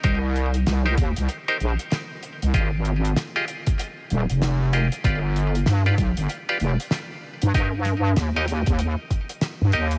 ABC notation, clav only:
X:1
M:4/4
L:1/16
Q:"Swing 16ths" 1/4=96
K:Cm
V:1 name="Clav"
[EGBc] z4 [EGBc] z3 [EGBc] z6 | [FGAe] z4 [FGAe] z8 [FGAe] z | [FG=Bd] z4 [FGBd] z3 [FGBd] z6 | [EGBe] z4 [EGBe] z8 [EGBe] z |]